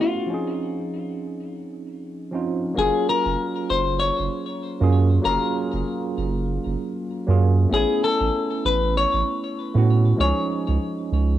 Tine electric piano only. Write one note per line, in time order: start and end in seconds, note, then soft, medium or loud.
0.00 0.13 A3 medium
0.00 0.14 B3 medium
0.00 0.14 C#4 medium
0.00 0.14 E4 medium
0.00 0.15 F#4 medium
0.26 2.28 F3 medium
0.26 2.29 C4 medium
0.26 2.30 C#4 medium
0.32 2.31 D#4 medium
0.32 2.32 G#4 medium
2.31 2.73 F3 medium
2.31 2.74 C4 medium
2.31 2.74 C#4 medium
2.31 2.75 D#4 medium
2.35 2.75 F4 medium
2.74 4.76 F#3 medium
2.74 4.76 A#3 medium
2.74 4.77 C#4 medium
2.80 4.78 F4 medium
2.80 4.79 G#4 loud
4.80 5.21 F#3 medium
4.80 5.22 A#3 medium
4.80 5.22 C#4 medium
4.80 5.23 F4 medium
4.80 5.23 G#4 medium
5.22 7.23 F#3 medium
5.22 7.24 A#3 medium
5.22 7.25 C#4 medium
5.27 7.26 F4 medium
5.27 7.27 G#4 loud
7.27 7.68 F#3 medium
7.27 7.69 A#3 medium
7.27 7.69 C#4 medium
7.27 7.70 F4 medium
7.27 7.70 G#4 medium
7.69 9.71 A3 medium
7.69 9.71 B3 medium
7.69 9.72 C#4 medium
7.75 9.73 E4 medium
7.75 9.74 G#5 loud
9.74 10.16 A3 medium
9.74 10.16 B3 medium
9.74 10.17 C#4 medium
9.74 10.17 E4 medium
9.74 10.18 F#4 medium
10.16 11.39 F3 medium
10.16 11.39 G#3 medium
10.16 11.39 C#4 medium
10.22 11.39 D#4 medium
10.22 11.39 G#4 loud